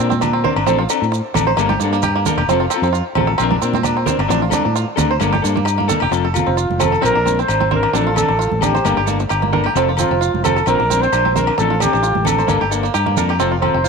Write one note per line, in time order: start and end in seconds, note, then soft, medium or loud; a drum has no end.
0.00 0.45 A#2 medium
0.00 0.14 C4 medium
0.00 0.14 D4 medium
0.00 0.12 A#4 medium
0.10 0.19 C4 medium
0.10 high conga medium
0.10 maracas soft
0.21 0.32 D4 medium
0.21 low conga medium
0.21 low agogo medium
0.21 maracas medium
0.33 0.42 C4 medium
0.44 0.60 C4 soft
0.44 0.59 D4 soft
0.44 0.58 A#4 soft
0.44 0.54 C5 medium
0.44 low conga medium
0.56 0.64 G1 medium
0.56 0.65 D4 medium
0.56 low agogo medium
0.67 0.85 A1 loud
0.67 0.81 F3 medium
0.67 0.77 C4 medium
0.67 0.82 C4 medium
0.67 0.82 D4 medium
0.67 0.82 A4 medium
0.67 maracas medium
0.78 0.87 F4 medium
0.89 1.00 D4 medium
0.89 1.05 D4 soft
0.89 1.04 A4 medium
0.89 low agogo medium
0.89 maracas medium
0.93 1.06 C4 soft
1.02 1.20 A2 medium
1.02 maracas soft
1.12 muted five-string banjo stroke medium
1.12 maracas medium
1.34 1.53 A1 medium
1.34 1.51 C4 soft
1.34 1.45 D4 medium
1.34 1.50 D4 soft
1.34 1.49 A4 medium
1.34 low conga medium
1.34 low agogo medium
1.34 maracas medium
1.47 1.56 C5 medium
1.57 1.75 G1 medium
1.57 1.72 G3 medium
1.57 1.67 A#3 medium
1.57 1.73 A#3 medium
1.57 1.73 D4 medium
1.57 1.73 A4 medium
1.57 low agogo medium
1.57 maracas medium
1.69 1.78 G4 medium
1.69 high conga medium
1.80 2.27 G2 medium
1.80 1.90 A#3 medium
1.80 1.96 A4 medium
1.80 maracas medium
1.85 1.98 A#3 soft
1.85 1.97 D4 medium
1.93 2.01 A#3 medium
1.93 maracas soft
2.02 2.13 G4 medium
2.02 low conga medium
2.02 low agogo medium
2.02 maracas medium
2.15 2.24 A#3 medium
2.26 2.42 A#3 soft
2.26 2.42 D4 soft
2.26 2.41 A4 medium
2.26 2.36 A#4 medium
2.26 low conga medium
2.26 maracas medium
2.37 2.46 E1 medium
2.37 2.46 G4 medium
2.37 low agogo medium
2.48 2.66 F1 medium
2.48 2.64 F3 medium
2.48 2.59 C4 medium
2.48 2.64 C4 medium
2.48 maracas medium
2.52 2.65 F4 medium
2.52 2.65 A4 medium
2.60 2.69 F4 medium
2.70 2.81 C4 medium
2.70 2.87 A4 soft
2.70 low agogo medium
2.70 maracas loud
2.76 2.89 C4 soft
2.76 2.88 F4 soft
2.82 3.01 F2 medium
2.82 2.92 C4 medium
2.82 maracas soft
2.93 3.03 F4 medium
2.93 maracas medium
3.15 3.34 A1 medium
3.15 3.26 C4 medium
3.15 3.32 F4 medium
3.15 3.31 A4 medium
3.15 low conga medium
3.15 low agogo medium
3.20 3.33 C4 soft
3.27 3.36 A4 medium
3.38 3.58 A#1 medium
3.38 3.54 F3 medium
3.38 3.49 C4 medium
3.38 low agogo medium
3.38 maracas medium
3.42 3.55 C4 medium
3.42 3.55 D4 medium
3.42 3.56 A#4 loud
3.51 3.60 D4 medium
3.51 high conga medium
3.62 4.08 A#2 medium
3.62 3.72 C4 medium
3.62 3.77 C4 medium
3.62 3.77 D4 medium
3.62 3.76 A#4 medium
3.62 maracas loud
3.74 3.83 C4 medium
3.74 high conga medium
3.74 maracas soft
3.83 3.95 D4 medium
3.83 low conga medium
3.83 low agogo medium
3.83 maracas medium
3.97 4.05 C4 medium
4.06 4.22 C4 soft
4.06 4.22 D4 soft
4.06 4.21 A#4 medium
4.06 4.17 C5 medium
4.06 low conga medium
4.06 maracas medium
4.19 4.27 G1 medium
4.19 4.28 D4 medium
4.19 low agogo medium
4.28 4.48 A1 loud
4.28 4.43 F3 medium
4.28 4.44 C4 medium
4.28 4.44 D4 medium
4.28 4.40 D4 medium
4.28 muted clean electric guitar stroke medium
4.28 maracas medium
4.42 4.51 F4 medium
4.50 4.67 C4 soft
4.50 4.66 D4 soft
4.50 4.63 D4 medium
4.50 4.66 A4 medium
4.50 high conga medium
4.50 low conga medium
4.50 low agogo medium
4.50 maracas loud
4.65 4.84 A2 medium
4.65 4.74 D4 medium
4.76 4.86 F4 medium
4.76 maracas medium
4.96 5.17 D2 medium
4.96 5.13 C4 soft
4.96 5.12 D4 medium
4.96 5.08 D4 medium
4.96 5.11 A4 medium
4.96 low conga medium
4.96 low agogo medium
4.96 maracas medium
5.11 5.19 C5 medium
5.20 5.39 G1 medium
5.20 5.35 G3 medium
5.20 5.31 A#3 medium
5.20 5.35 A#3 medium
5.20 5.35 D4 medium
5.20 5.36 A4 medium
5.20 high conga medium
5.20 low agogo medium
5.20 maracas medium
5.33 5.41 G4 medium
5.33 high conga medium
5.42 5.90 G2 medium
5.42 5.54 A#3 medium
5.42 5.59 A#3 soft
5.42 5.58 D4 medium
5.42 5.57 A4 medium
5.42 maracas medium
5.56 5.64 A#3 medium
5.56 high conga medium
5.65 muted five-string banjo stroke medium
5.65 low agogo medium
5.65 maracas medium
5.78 5.87 A#3 medium
5.78 high conga medium
5.88 6.05 A#3 soft
5.88 6.04 D4 soft
5.88 6.03 A4 medium
5.88 5.99 A4 medium
5.88 low conga medium
5.88 maracas medium
6.00 6.10 E1 medium
6.00 6.10 G4 medium
6.00 low agogo medium
6.11 6.40 F1 medium
6.11 6.26 F3 medium
6.11 6.26 C4 medium
6.11 6.26 F4 medium
6.11 6.27 A4 medium
6.11 muted five-string banjo stroke medium
6.11 maracas medium
6.25 6.33 A4 medium
6.34 6.50 C4 soft
6.34 6.85 F4 medium
6.34 6.49 F4 soft
6.34 6.49 A4 soft
6.34 low conga medium
6.34 low agogo medium
6.34 maracas medium
6.47 6.65 F1 medium
6.47 6.55 C4 medium
6.57 6.67 F4 medium
6.57 maracas medium
6.70 6.96 F1 medium
6.70 high conga medium
6.80 6.90 C4 medium
6.80 6.96 C4 soft
6.80 6.95 F4 soft
6.80 6.94 A4 soft
6.80 7.04 A4 medium
6.80 low conga medium
6.80 low agogo medium
6.80 maracas medium
6.92 7.01 A4 medium
6.92 maracas soft
7.01 7.13 A#1 medium
7.01 7.17 F3 medium
7.01 7.17 C4 medium
7.01 7.13 C4 medium
7.01 7.18 D4 medium
7.01 7.18 A#4 medium
7.01 7.42 A#4 loud
7.01 low agogo medium
7.01 maracas medium
7.15 7.42 A#1 medium
7.15 7.24 D4 medium
7.25 7.36 C4 medium
7.25 7.41 C4 soft
7.25 7.40 D4 soft
7.25 7.40 A#4 medium
7.25 high conga medium
7.25 maracas medium
7.39 7.47 C4 medium
7.39 7.72 C5 medium
7.39 maracas soft
7.48 7.85 G#1 medium
7.48 7.59 D4 medium
7.48 low agogo medium
7.48 maracas medium
7.60 7.69 C4 medium
7.60 high conga medium
7.71 7.87 C4 soft
7.71 7.86 D4 soft
7.71 7.86 A#4 medium
7.71 7.98 A#4 medium
7.71 7.81 C5 medium
7.71 low conga medium
7.83 7.92 D4 medium
7.83 low agogo medium
7.93 8.22 A1 medium
7.93 8.09 F3 medium
7.93 8.09 C4 medium
7.93 8.04 D4 medium
7.93 8.09 D4 medium
7.93 8.10 A4 medium
7.93 8.16 A4 medium
7.93 maracas medium
8.07 8.15 F4 medium
8.14 8.31 C4 soft
8.14 8.30 D4 soft
8.14 8.27 D4 medium
8.14 8.30 A4 soft
8.14 8.65 A4 medium
8.14 low conga medium
8.14 low agogo medium
8.14 maracas medium
8.28 8.47 A1 medium
8.28 8.37 D4 medium
8.39 8.49 F4 medium
8.39 maracas medium
8.51 8.79 A1 medium
8.51 high conga medium
8.61 8.78 C4 soft
8.61 8.73 D4 medium
8.61 8.77 D4 soft
8.61 9.08 G4 medium
8.61 8.76 A4 soft
8.61 low conga medium
8.61 low agogo medium
8.61 maracas medium
8.75 8.83 C5 medium
8.75 maracas soft
8.85 8.95 G1 medium
8.85 8.99 G3 medium
8.85 8.95 A#3 medium
8.85 9.00 A#3 medium
8.85 9.00 D4 medium
8.85 9.00 A4 medium
8.85 low agogo medium
8.85 maracas medium
8.97 9.24 G1 medium
8.97 9.06 G4 medium
9.06 9.18 A#3 medium
9.06 9.23 A#3 soft
9.06 9.22 D4 soft
9.06 9.21 A4 soft
9.06 high conga medium
9.06 maracas medium
9.20 muted five-string banjo stroke medium
9.20 maracas soft
9.29 9.67 G1 medium
9.29 9.41 G4 medium
9.29 low agogo medium
9.29 maracas medium
9.42 9.51 A#3 medium
9.42 high conga medium
9.53 9.69 A#3 soft
9.53 9.68 D4 medium
9.53 9.67 A4 medium
9.53 9.63 A#4 medium
9.53 low conga medium
9.64 9.75 G4 medium
9.64 low agogo medium
9.75 10.04 F1 medium
9.75 9.90 F3 medium
9.75 9.91 C4 medium
9.75 9.87 C4 medium
9.75 9.91 F4 medium
9.75 9.91 A4 loud
9.75 maracas medium
9.89 9.97 F4 medium
9.97 10.09 C4 medium
9.97 10.41 F4 medium
9.97 10.14 F4 soft
9.97 10.12 A4 soft
9.97 low conga medium
9.97 low agogo medium
9.97 maracas loud
10.02 10.15 C4 soft
10.11 10.29 F1 medium
10.11 10.20 C4 medium
10.21 10.31 F4 medium
10.21 maracas medium
10.34 10.60 F1 medium
10.34 high conga medium
10.44 10.55 C4 medium
10.44 10.60 F4 soft
10.44 10.70 A4 medium
10.44 10.59 A4 soft
10.44 low conga medium
10.44 low agogo medium
10.44 maracas medium
10.48 10.61 C4 soft
10.56 10.65 A4 medium
10.56 maracas soft
10.66 10.77 A#1 medium
10.66 10.81 F3 medium
10.66 10.77 C4 medium
10.66 10.82 C4 medium
10.66 10.82 D4 medium
10.66 11.03 A#4 loud
10.66 10.83 A#4 medium
10.66 low agogo medium
10.66 maracas medium
10.80 11.06 A#1 medium
10.80 10.88 D4 medium
10.90 11.00 C4 medium
10.90 11.06 D4 medium
10.90 11.05 A#4 medium
10.90 high conga medium
10.90 maracas medium
10.95 11.07 C4 soft
11.02 11.12 C4 medium
11.02 11.35 C5 medium
11.02 maracas soft
11.13 11.49 A#1 medium
11.13 11.23 D4 medium
11.13 low agogo medium
11.13 maracas medium
11.25 11.34 C4 medium
11.25 high conga medium
11.35 11.56 A#4 medium
11.35 11.51 A#4 medium
11.35 11.46 C5 medium
11.35 low conga medium
11.35 maracas medium
11.39 11.52 C4 soft
11.39 11.52 D4 soft
11.47 11.56 D4 medium
11.47 low agogo medium
11.58 11.86 A1 medium
11.58 11.74 F3 medium
11.58 11.74 C4 medium
11.58 11.74 D4 medium
11.58 11.83 A4 medium
11.58 muted five-string banjo stroke medium
11.58 maracas medium
11.62 11.75 A4 medium
11.70 11.79 F4 medium
11.80 11.97 C4 soft
11.80 11.91 D4 medium
11.80 11.97 D4 soft
11.80 12.27 G4 medium
11.80 11.96 A4 soft
11.80 low conga medium
11.80 low agogo medium
11.80 maracas medium
11.93 12.12 A1 medium
11.93 12.02 D4 medium
11.93 maracas soft
12.03 12.13 F4 medium
12.03 maracas medium
12.15 12.43 A1 medium
12.15 high conga medium
12.25 12.41 C4 soft
12.25 12.36 D4 medium
12.25 12.41 D4 soft
12.25 12.40 A4 soft
12.25 12.69 A4 medium
12.25 low conga medium
12.25 low agogo medium
12.25 maracas medium
12.39 12.47 C5 medium
12.39 maracas soft
12.47 12.59 G1 medium
12.47 12.63 G3 medium
12.47 12.59 A#3 medium
12.47 12.63 A#3 medium
12.47 12.63 D4 medium
12.47 12.64 A4 medium
12.47 low conga medium
12.47 low agogo medium
12.47 maracas medium
12.61 12.88 G1 medium
12.61 12.70 G4 medium
12.71 12.82 A#3 medium
12.71 12.87 A#3 soft
12.71 12.86 D4 soft
12.71 12.86 A4 medium
12.71 maracas medium
12.83 12.92 A#3 medium
12.83 maracas soft
12.94 13.15 G2 medium
12.94 13.04 G4 medium
12.94 low agogo medium
12.94 maracas medium
13.06 13.15 A#3 medium
13.06 high conga medium
13.17 13.38 F2 medium
13.17 13.33 A#3 soft
13.17 13.33 D4 soft
13.17 13.32 A4 soft
13.17 13.28 A#4 medium
13.17 high conga medium
13.17 low conga medium
13.17 maracas medium
13.29 13.38 G4 medium
13.29 low agogo medium
13.40 13.68 F1 medium
13.40 13.54 F3 medium
13.40 13.50 C4 medium
13.40 13.54 C4 medium
13.40 13.55 F4 medium
13.40 13.55 A4 medium
13.40 maracas medium
13.52 13.61 F4 medium
13.62 13.73 C4 medium
13.62 13.78 C4 soft
13.62 13.77 F4 soft
13.62 13.77 A4 soft
13.62 13.89 C5 medium
13.62 low conga medium
13.62 low agogo medium
13.74 13.89 F1 medium
13.74 13.83 C4 medium
13.84 13.89 F4 medium
13.84 maracas medium